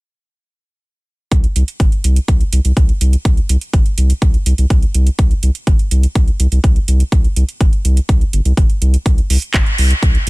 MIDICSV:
0, 0, Header, 1, 3, 480
1, 0, Start_track
1, 0, Tempo, 483871
1, 1305, Time_signature, 4, 2, 24, 8
1, 10213, End_track
2, 0, Start_track
2, 0, Title_t, "Sub bass"
2, 0, Program_c, 0, 38
2, 1304, Note_on_c, 0, 36, 97
2, 1453, Note_off_c, 0, 36, 0
2, 1545, Note_on_c, 0, 36, 94
2, 1620, Note_off_c, 0, 36, 0
2, 1785, Note_on_c, 0, 31, 98
2, 1860, Note_off_c, 0, 31, 0
2, 2025, Note_on_c, 0, 36, 80
2, 2174, Note_off_c, 0, 36, 0
2, 2265, Note_on_c, 0, 36, 90
2, 2414, Note_off_c, 0, 36, 0
2, 2505, Note_on_c, 0, 36, 100
2, 2580, Note_off_c, 0, 36, 0
2, 2626, Note_on_c, 0, 36, 88
2, 2700, Note_off_c, 0, 36, 0
2, 2745, Note_on_c, 0, 36, 96
2, 2894, Note_off_c, 0, 36, 0
2, 2985, Note_on_c, 0, 36, 102
2, 3134, Note_off_c, 0, 36, 0
2, 3225, Note_on_c, 0, 36, 96
2, 3374, Note_off_c, 0, 36, 0
2, 3465, Note_on_c, 0, 36, 96
2, 3540, Note_off_c, 0, 36, 0
2, 3704, Note_on_c, 0, 31, 95
2, 3779, Note_off_c, 0, 31, 0
2, 3945, Note_on_c, 0, 36, 83
2, 4094, Note_off_c, 0, 36, 0
2, 4185, Note_on_c, 0, 36, 90
2, 4334, Note_off_c, 0, 36, 0
2, 4424, Note_on_c, 0, 36, 105
2, 4499, Note_off_c, 0, 36, 0
2, 4545, Note_on_c, 0, 36, 95
2, 4620, Note_off_c, 0, 36, 0
2, 4665, Note_on_c, 0, 36, 97
2, 4814, Note_off_c, 0, 36, 0
2, 4905, Note_on_c, 0, 36, 96
2, 5054, Note_off_c, 0, 36, 0
2, 5145, Note_on_c, 0, 36, 90
2, 5294, Note_off_c, 0, 36, 0
2, 5385, Note_on_c, 0, 36, 94
2, 5460, Note_off_c, 0, 36, 0
2, 5625, Note_on_c, 0, 31, 93
2, 5700, Note_off_c, 0, 31, 0
2, 5865, Note_on_c, 0, 36, 82
2, 6014, Note_off_c, 0, 36, 0
2, 6105, Note_on_c, 0, 36, 88
2, 6254, Note_off_c, 0, 36, 0
2, 6345, Note_on_c, 0, 36, 106
2, 6420, Note_off_c, 0, 36, 0
2, 6466, Note_on_c, 0, 36, 91
2, 6540, Note_off_c, 0, 36, 0
2, 6585, Note_on_c, 0, 36, 100
2, 6734, Note_off_c, 0, 36, 0
2, 6824, Note_on_c, 0, 36, 93
2, 6973, Note_off_c, 0, 36, 0
2, 7065, Note_on_c, 0, 36, 93
2, 7214, Note_off_c, 0, 36, 0
2, 7304, Note_on_c, 0, 36, 100
2, 7379, Note_off_c, 0, 36, 0
2, 7545, Note_on_c, 0, 31, 95
2, 7619, Note_off_c, 0, 31, 0
2, 7784, Note_on_c, 0, 36, 81
2, 7933, Note_off_c, 0, 36, 0
2, 8025, Note_on_c, 0, 36, 89
2, 8174, Note_off_c, 0, 36, 0
2, 8264, Note_on_c, 0, 31, 80
2, 8339, Note_off_c, 0, 31, 0
2, 8384, Note_on_c, 0, 36, 101
2, 8459, Note_off_c, 0, 36, 0
2, 8504, Note_on_c, 0, 31, 95
2, 8579, Note_off_c, 0, 31, 0
2, 8744, Note_on_c, 0, 36, 91
2, 8893, Note_off_c, 0, 36, 0
2, 8984, Note_on_c, 0, 36, 92
2, 9134, Note_off_c, 0, 36, 0
2, 9225, Note_on_c, 0, 36, 96
2, 9299, Note_off_c, 0, 36, 0
2, 9465, Note_on_c, 0, 31, 97
2, 9540, Note_off_c, 0, 31, 0
2, 9706, Note_on_c, 0, 36, 80
2, 9854, Note_off_c, 0, 36, 0
2, 9945, Note_on_c, 0, 36, 88
2, 10094, Note_off_c, 0, 36, 0
2, 10213, End_track
3, 0, Start_track
3, 0, Title_t, "Drums"
3, 1305, Note_on_c, 9, 36, 108
3, 1305, Note_on_c, 9, 42, 51
3, 1404, Note_off_c, 9, 36, 0
3, 1404, Note_off_c, 9, 42, 0
3, 1426, Note_on_c, 9, 42, 26
3, 1525, Note_off_c, 9, 42, 0
3, 1546, Note_on_c, 9, 42, 86
3, 1645, Note_off_c, 9, 42, 0
3, 1666, Note_on_c, 9, 42, 48
3, 1765, Note_off_c, 9, 42, 0
3, 1785, Note_on_c, 9, 36, 107
3, 1785, Note_on_c, 9, 42, 51
3, 1884, Note_off_c, 9, 36, 0
3, 1885, Note_off_c, 9, 42, 0
3, 1906, Note_on_c, 9, 42, 25
3, 2005, Note_off_c, 9, 42, 0
3, 2026, Note_on_c, 9, 42, 91
3, 2125, Note_off_c, 9, 42, 0
3, 2146, Note_on_c, 9, 42, 51
3, 2246, Note_off_c, 9, 42, 0
3, 2265, Note_on_c, 9, 36, 107
3, 2266, Note_on_c, 9, 42, 50
3, 2364, Note_off_c, 9, 36, 0
3, 2365, Note_off_c, 9, 42, 0
3, 2386, Note_on_c, 9, 42, 26
3, 2485, Note_off_c, 9, 42, 0
3, 2505, Note_on_c, 9, 42, 90
3, 2604, Note_off_c, 9, 42, 0
3, 2626, Note_on_c, 9, 42, 53
3, 2725, Note_off_c, 9, 42, 0
3, 2745, Note_on_c, 9, 36, 109
3, 2746, Note_on_c, 9, 42, 54
3, 2844, Note_off_c, 9, 36, 0
3, 2845, Note_off_c, 9, 42, 0
3, 2866, Note_on_c, 9, 42, 26
3, 2965, Note_off_c, 9, 42, 0
3, 2986, Note_on_c, 9, 42, 86
3, 3085, Note_off_c, 9, 42, 0
3, 3106, Note_on_c, 9, 42, 49
3, 3205, Note_off_c, 9, 42, 0
3, 3225, Note_on_c, 9, 36, 112
3, 3226, Note_on_c, 9, 42, 49
3, 3324, Note_off_c, 9, 36, 0
3, 3325, Note_off_c, 9, 42, 0
3, 3346, Note_on_c, 9, 42, 25
3, 3446, Note_off_c, 9, 42, 0
3, 3465, Note_on_c, 9, 42, 89
3, 3565, Note_off_c, 9, 42, 0
3, 3585, Note_on_c, 9, 42, 46
3, 3685, Note_off_c, 9, 42, 0
3, 3705, Note_on_c, 9, 36, 111
3, 3705, Note_on_c, 9, 42, 49
3, 3804, Note_off_c, 9, 36, 0
3, 3804, Note_off_c, 9, 42, 0
3, 3825, Note_on_c, 9, 42, 25
3, 3924, Note_off_c, 9, 42, 0
3, 3944, Note_on_c, 9, 42, 85
3, 4043, Note_off_c, 9, 42, 0
3, 4065, Note_on_c, 9, 42, 51
3, 4164, Note_off_c, 9, 42, 0
3, 4185, Note_on_c, 9, 36, 116
3, 4185, Note_on_c, 9, 42, 51
3, 4284, Note_off_c, 9, 36, 0
3, 4284, Note_off_c, 9, 42, 0
3, 4305, Note_on_c, 9, 42, 24
3, 4405, Note_off_c, 9, 42, 0
3, 4425, Note_on_c, 9, 42, 85
3, 4524, Note_off_c, 9, 42, 0
3, 4545, Note_on_c, 9, 42, 51
3, 4644, Note_off_c, 9, 42, 0
3, 4665, Note_on_c, 9, 36, 110
3, 4666, Note_on_c, 9, 42, 50
3, 4764, Note_off_c, 9, 36, 0
3, 4765, Note_off_c, 9, 42, 0
3, 4786, Note_on_c, 9, 42, 25
3, 4885, Note_off_c, 9, 42, 0
3, 4905, Note_on_c, 9, 42, 84
3, 5005, Note_off_c, 9, 42, 0
3, 5025, Note_on_c, 9, 42, 51
3, 5124, Note_off_c, 9, 42, 0
3, 5145, Note_on_c, 9, 36, 114
3, 5145, Note_on_c, 9, 42, 46
3, 5244, Note_off_c, 9, 36, 0
3, 5244, Note_off_c, 9, 42, 0
3, 5265, Note_on_c, 9, 42, 24
3, 5364, Note_off_c, 9, 42, 0
3, 5384, Note_on_c, 9, 42, 80
3, 5484, Note_off_c, 9, 42, 0
3, 5505, Note_on_c, 9, 42, 47
3, 5605, Note_off_c, 9, 42, 0
3, 5625, Note_on_c, 9, 36, 108
3, 5625, Note_on_c, 9, 42, 47
3, 5724, Note_off_c, 9, 36, 0
3, 5724, Note_off_c, 9, 42, 0
3, 5746, Note_on_c, 9, 42, 24
3, 5845, Note_off_c, 9, 42, 0
3, 5865, Note_on_c, 9, 42, 82
3, 5964, Note_off_c, 9, 42, 0
3, 5985, Note_on_c, 9, 42, 50
3, 6085, Note_off_c, 9, 42, 0
3, 6105, Note_on_c, 9, 36, 115
3, 6105, Note_on_c, 9, 42, 46
3, 6204, Note_off_c, 9, 36, 0
3, 6204, Note_off_c, 9, 42, 0
3, 6225, Note_on_c, 9, 42, 22
3, 6324, Note_off_c, 9, 42, 0
3, 6345, Note_on_c, 9, 42, 81
3, 6445, Note_off_c, 9, 42, 0
3, 6466, Note_on_c, 9, 42, 49
3, 6565, Note_off_c, 9, 42, 0
3, 6585, Note_on_c, 9, 36, 118
3, 6586, Note_on_c, 9, 42, 49
3, 6684, Note_off_c, 9, 36, 0
3, 6685, Note_off_c, 9, 42, 0
3, 6705, Note_on_c, 9, 42, 24
3, 6805, Note_off_c, 9, 42, 0
3, 6825, Note_on_c, 9, 42, 81
3, 6924, Note_off_c, 9, 42, 0
3, 6946, Note_on_c, 9, 42, 47
3, 7045, Note_off_c, 9, 42, 0
3, 7064, Note_on_c, 9, 36, 114
3, 7065, Note_on_c, 9, 42, 46
3, 7164, Note_off_c, 9, 36, 0
3, 7165, Note_off_c, 9, 42, 0
3, 7186, Note_on_c, 9, 42, 23
3, 7286, Note_off_c, 9, 42, 0
3, 7305, Note_on_c, 9, 42, 79
3, 7405, Note_off_c, 9, 42, 0
3, 7426, Note_on_c, 9, 42, 45
3, 7525, Note_off_c, 9, 42, 0
3, 7544, Note_on_c, 9, 36, 114
3, 7546, Note_on_c, 9, 42, 48
3, 7644, Note_off_c, 9, 36, 0
3, 7645, Note_off_c, 9, 42, 0
3, 7666, Note_on_c, 9, 42, 23
3, 7765, Note_off_c, 9, 42, 0
3, 7786, Note_on_c, 9, 42, 78
3, 7885, Note_off_c, 9, 42, 0
3, 7906, Note_on_c, 9, 42, 48
3, 8005, Note_off_c, 9, 42, 0
3, 8025, Note_on_c, 9, 36, 112
3, 8026, Note_on_c, 9, 42, 48
3, 8124, Note_off_c, 9, 36, 0
3, 8126, Note_off_c, 9, 42, 0
3, 8147, Note_on_c, 9, 42, 22
3, 8246, Note_off_c, 9, 42, 0
3, 8266, Note_on_c, 9, 42, 82
3, 8365, Note_off_c, 9, 42, 0
3, 8386, Note_on_c, 9, 42, 49
3, 8486, Note_off_c, 9, 42, 0
3, 8505, Note_on_c, 9, 36, 116
3, 8506, Note_on_c, 9, 42, 47
3, 8604, Note_off_c, 9, 36, 0
3, 8605, Note_off_c, 9, 42, 0
3, 8626, Note_on_c, 9, 42, 25
3, 8725, Note_off_c, 9, 42, 0
3, 8746, Note_on_c, 9, 42, 80
3, 8845, Note_off_c, 9, 42, 0
3, 8866, Note_on_c, 9, 42, 48
3, 8965, Note_off_c, 9, 42, 0
3, 8985, Note_on_c, 9, 36, 112
3, 8986, Note_on_c, 9, 42, 47
3, 9084, Note_off_c, 9, 36, 0
3, 9085, Note_off_c, 9, 42, 0
3, 9106, Note_on_c, 9, 42, 22
3, 9206, Note_off_c, 9, 42, 0
3, 9226, Note_on_c, 9, 46, 104
3, 9325, Note_off_c, 9, 46, 0
3, 9347, Note_on_c, 9, 42, 46
3, 9446, Note_off_c, 9, 42, 0
3, 9464, Note_on_c, 9, 39, 109
3, 9465, Note_on_c, 9, 36, 107
3, 9466, Note_on_c, 9, 42, 48
3, 9563, Note_off_c, 9, 39, 0
3, 9564, Note_off_c, 9, 36, 0
3, 9565, Note_off_c, 9, 42, 0
3, 9586, Note_on_c, 9, 42, 22
3, 9686, Note_off_c, 9, 42, 0
3, 9705, Note_on_c, 9, 46, 98
3, 9804, Note_off_c, 9, 46, 0
3, 9826, Note_on_c, 9, 42, 50
3, 9925, Note_off_c, 9, 42, 0
3, 9945, Note_on_c, 9, 36, 110
3, 9945, Note_on_c, 9, 42, 47
3, 10044, Note_off_c, 9, 36, 0
3, 10044, Note_off_c, 9, 42, 0
3, 10066, Note_on_c, 9, 42, 22
3, 10165, Note_off_c, 9, 42, 0
3, 10213, End_track
0, 0, End_of_file